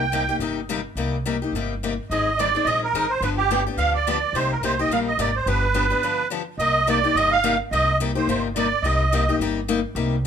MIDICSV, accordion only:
0, 0, Header, 1, 2, 480
1, 0, Start_track
1, 0, Key_signature, -3, "minor"
1, 0, Tempo, 281294
1, 1643, Time_signature, 4, 2, 24, 8
1, 17523, End_track
2, 0, Start_track
2, 0, Title_t, "Accordion"
2, 0, Program_c, 0, 21
2, 0, Note_on_c, 0, 79, 83
2, 621, Note_off_c, 0, 79, 0
2, 3587, Note_on_c, 0, 75, 74
2, 4059, Note_on_c, 0, 74, 87
2, 4071, Note_off_c, 0, 75, 0
2, 4506, Note_on_c, 0, 75, 84
2, 4548, Note_off_c, 0, 74, 0
2, 4772, Note_off_c, 0, 75, 0
2, 4830, Note_on_c, 0, 70, 75
2, 5289, Note_on_c, 0, 72, 76
2, 5311, Note_off_c, 0, 70, 0
2, 5496, Note_off_c, 0, 72, 0
2, 5502, Note_on_c, 0, 71, 80
2, 5623, Note_off_c, 0, 71, 0
2, 5755, Note_on_c, 0, 67, 89
2, 6205, Note_off_c, 0, 67, 0
2, 6445, Note_on_c, 0, 77, 99
2, 6703, Note_off_c, 0, 77, 0
2, 6732, Note_on_c, 0, 74, 79
2, 7420, Note_on_c, 0, 72, 82
2, 7431, Note_off_c, 0, 74, 0
2, 7697, Note_off_c, 0, 72, 0
2, 7709, Note_on_c, 0, 70, 71
2, 7886, Note_off_c, 0, 70, 0
2, 7923, Note_on_c, 0, 72, 85
2, 8183, Note_on_c, 0, 75, 68
2, 8187, Note_off_c, 0, 72, 0
2, 8382, Note_off_c, 0, 75, 0
2, 8399, Note_on_c, 0, 77, 94
2, 8515, Note_off_c, 0, 77, 0
2, 8666, Note_on_c, 0, 75, 74
2, 8863, Note_off_c, 0, 75, 0
2, 8865, Note_on_c, 0, 74, 75
2, 9130, Note_on_c, 0, 72, 68
2, 9139, Note_off_c, 0, 74, 0
2, 9335, Note_off_c, 0, 72, 0
2, 9344, Note_on_c, 0, 71, 79
2, 10704, Note_off_c, 0, 71, 0
2, 11240, Note_on_c, 0, 75, 85
2, 11734, Note_off_c, 0, 75, 0
2, 11738, Note_on_c, 0, 74, 84
2, 12197, Note_on_c, 0, 75, 91
2, 12223, Note_off_c, 0, 74, 0
2, 12482, Note_off_c, 0, 75, 0
2, 12483, Note_on_c, 0, 77, 92
2, 12926, Note_off_c, 0, 77, 0
2, 13167, Note_on_c, 0, 75, 85
2, 13610, Note_off_c, 0, 75, 0
2, 13924, Note_on_c, 0, 72, 67
2, 14366, Note_off_c, 0, 72, 0
2, 14597, Note_on_c, 0, 74, 82
2, 15059, Note_on_c, 0, 75, 74
2, 15092, Note_off_c, 0, 74, 0
2, 15960, Note_off_c, 0, 75, 0
2, 17523, End_track
0, 0, End_of_file